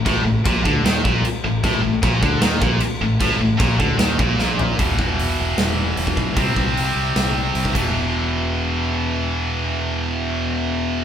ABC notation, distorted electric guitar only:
X:1
M:4/4
L:1/8
Q:1/4=152
K:Em
V:1 name="Distorted electric guitar" clef=bass
A,, A,, ^A,, D, ^D, A,, z =A,, | A,, A,, ^A,, D, ^D, A,, z =A,, | A,, A,, ^A,, D, ^D, A,, A,,2 | [E,,B,,E,]8 |
[C,G,C]6- [C,G,C] [E,,B,,E,]- | [E,,B,,E,]8- | [E,,B,,E,]8 |]